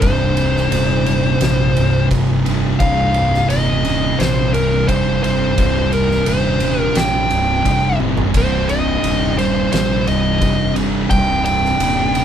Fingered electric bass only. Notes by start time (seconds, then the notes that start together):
0.02 C1
0.72 D#1
1.41 A#1
1.76 C1
2.10 F1
2.80 C1
3.49 D#1
4.19 A#1
4.53 C1
4.89 F1
5.58 C1
6.27 D#1
6.96 A#1
7.31 C1
7.65 F1
8.35 C1
9.04 D#1
9.73 A#1
10.07 C1
10.42 F1
11.11 C1
11.80 D#1